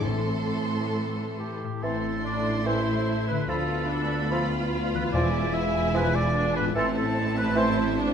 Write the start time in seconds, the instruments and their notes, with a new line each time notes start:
Already playing: harp A2 C4 E4
0.00 double bass section A1, cello section A2, timpani A2, viola section E3 A4, french horn section C4, harp A4
0.04 french horn section A3, violin section A4 C6
1.37 clarinet G4, oboe G4
1.63 harp A2
1.67 harp C4
1.73 harp E4 A4
1.82 double bass section A1, cello section A2, bassoon E3, french horn section A3 E4, viola section C4, violin section E4 A4 C6, oboe A4, clarinet A4, flute section C6
2.23 viola section D4, clarinet D5, oboe D5
2.66 bassoon E3, viola section E4, clarinet C5, oboe C5, flute section C6
3.27 harp D3, clarinet B4, oboe B4
3.34 harp B3
3.39 harp F4
3.43 harp B4
3.48 cello section D2, double bass section D2, bassoon F3, french horn section B3 F4, viola section F4, violin section F4 B4 B5, clarinet A4, oboe A4, flute section B5
3.90 viola section D4, oboe A4, clarinet A4
4.31 bassoon F3, viola section F4, flute section B5
4.93 harp E3, clarinet B4, oboe B4
4.99 harp B3
5.03 harp F4
5.08 harp G#4
5.12 double bass section E1, timpani E2, cello section E2, bassoon F3, french horn section G#3, viola section E4, oboe D5, clarinet D5, flute section G#5, violin section G#5
5.54 oboe E5, clarinet E5
5.94 bassoon F3, clarinet B4, oboe B4, flute section G#5
6.15 oboe D5, clarinet D5
6.35 viola section D4
6.56 harp A2, clarinet B4, oboe B4
6.62 harp C4
6.66 harp E4
6.71 harp A4
6.75 double bass section A1, cello section A2, bassoon E3, french horn section C4 E4, viola section C4, violin section E4 C5 A5, clarinet A4, oboe A4, flute section C6
6.97 clarinet A4, oboe A4
7.38 oboe B4, clarinet B4
7.56 bassoon E3, viola section E4, clarinet C5, oboe C5, flute section C6
7.98 viola section D4